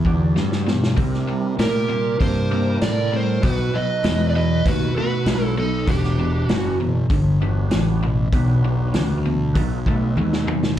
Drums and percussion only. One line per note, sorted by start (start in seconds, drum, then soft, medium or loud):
0.05 kick medium
0.36 snare soft
0.52 snare medium
0.68 snare medium
0.83 snare medium
0.97 kick loud
0.97 open hi-hat soft
1.14 snare soft
1.59 snare loud
1.59 open hi-hat soft
2.20 kick medium
2.20 open hi-hat soft
2.81 snare medium
2.81 open hi-hat soft
3.43 kick loud
3.43 open hi-hat soft
4.04 snare loud
4.04 open hi-hat soft
4.66 kick loud
4.66 open hi-hat soft
5.26 snare loud
5.26 open hi-hat soft
5.87 kick medium
5.87 open hi-hat soft
6.04 snare soft
6.49 snare loud
6.49 open hi-hat soft
7.10 kick loud
7.10 open hi-hat soft
7.71 snare loud
7.71 open hi-hat soft
8.32 kick loud
8.32 open hi-hat soft
8.94 snare loud
8.94 open hi-hat soft
9.55 kick medium
9.55 open hi-hat soft
9.86 kick medium
10.17 high tom medium
10.33 snare medium
10.48 mid tom medium
10.63 snare medium